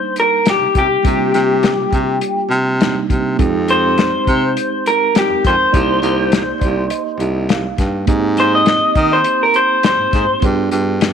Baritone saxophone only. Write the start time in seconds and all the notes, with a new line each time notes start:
0.61 C3
0.75 C3
0.90 C3
1.04 C3
1.34 C3
1.79 C3
1.92 C3
2.50 C3
3.10 C3
3.39 F2
4.27 C3
5.29 F2
5.45 F2
5.58 F2
5.74 C2
6.02 C2
6.46 C2
6.61 C2
7.19 C2
7.79 G2
8.08 G#2
8.96 D#3
9.99 G#2
10.13 G#2
10.29 G#2
10.42 G2
10.71 G2